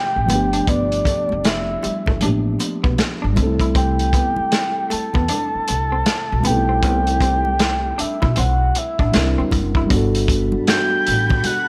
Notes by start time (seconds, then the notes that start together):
Already playing: F3 A3 C4 D4 G4 G5
0.16 A1
0.26 F3 A3, muted conga, high conga, low conga
0.30 G1 B3 D4, closed hi-hat
0.35 G4
0.53 D4, closed hi-hat
0.67 G1 B3 D5, kick, closed hi-hat, muted conga
0.92 closed hi-hat
1.05 A3, kick, closed hi-hat
1.29 F1, high conga
1.44 E5, muted clean electric guitar stroke, snare, closed hi-hat, muted conga
1.83 G3, muted upright bass stroke, closed hi-hat, muted conga
2.06 G1 A3, kick, low conga
2.20 A1 F3 A3 A#3 D4, closed hi-hat, high conga
2.25 G4
2.29 B3
2.59 muted clean electric guitar stroke, closed hi-hat, muted conga
2.84 B1 B3, kick
2.98 snare, closed hi-hat, muted conga
3.22 G1 D4
3.33 G3 A3, muted conga, high conga, low conga
3.37 C2 C4 D4, muted clean electric guitar stroke, kick, closed hi-hat
3.43 A4
3.47 E4
3.60 E4, kick, closed hi-hat
3.75 C4 G5, kick, closed hi-hat
3.99 closed hi-hat
4.13 B3, kick, closed hi-hat, muted conga
4.36 muted upright bass stroke, high conga
4.52 muted clean electric guitar stroke, snare, closed hi-hat
4.90 A3 A5, muted upright bass stroke, closed hi-hat, muted conga
5.14 E2 B3, kick, low conga
5.28 D4, closed hi-hat, high conga
5.55 muted upright bass stroke
5.68 C2, muted clean electric guitar stroke, closed hi-hat
5.92 C4
6.06 muted clean electric guitar stroke, snare, closed hi-hat, muted conga
6.32 B1
6.41 G3 A3, high conga, low conga
6.45 B1 B3 C4 D#4 G5, closed hi-hat
6.50 A4
6.54 E4
6.69 C4
6.83 C2 B3, kick, closed hi-hat, muted conga
7.07 closed hi-hat
7.21 C4, kick, closed hi-hat, muted conga
7.45 high conga
7.59 muted clean electric guitar stroke, snare, closed hi-hat, muted conga
7.98 D4 E5, muted upright bass stroke, closed hi-hat
8.22 B1 E4, kick, low conga
8.36 B1 C4 F#5, closed hi-hat, muted conga, high conga
8.75 E5, muted clean electric guitar stroke, closed hi-hat
8.99 A1 D4, kick
9.12 C2 G3 C4 D4 E4, snare, closed hi-hat, muted conga
9.17 A#4
9.38 D2 C4
9.51 F#1, muted clean electric guitar stroke, kick, closed hi-hat, muted conga, high conga, low conga
9.75 E4, kick
9.87 G3 B3 F#4 A5 B5, kick, closed hi-hat
9.91 G1 D4 F#4
9.96 A4
10.15 closed hi-hat
10.28 kick, closed hi-hat
10.52 high conga
10.67 G6, snare, closed hi-hat, muted conga
11.07 A1, closed hi-hat
11.30 kick, low conga
11.44 F#6, closed hi-hat, high conga